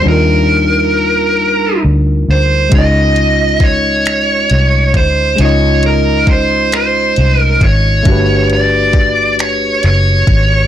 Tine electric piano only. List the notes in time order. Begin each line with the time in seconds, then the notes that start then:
0.02 G3 D4
0.07 D#4 F4
0.11 A#4
2.69 G#3 C#4
2.74 D#4 F4
2.78 D#5
5.36 G#3 C#4
5.41 D#4 F4
5.45 D#5
8.03 A3 D4
8.07 F#4 G4
8.12 B4